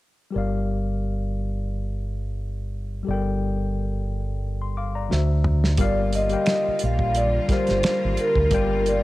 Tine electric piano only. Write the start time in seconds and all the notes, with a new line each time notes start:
0.31 G3 G4 A#4
0.36 D5 F5
3.03 G3 G4 A4
3.08 D5 G5
3.13 A#4
4.62 C6
4.77 F5 D6
4.95 D5 A#5
5.09 D3 D4 F#4 C5 E5
5.78 G3 G4 A#4 D5 F5
6.30 G3 G4 A#4 F5 G5
7.48 G3 G4 A#4 D5 F5
8.51 G3 G4 A#4 D5 G5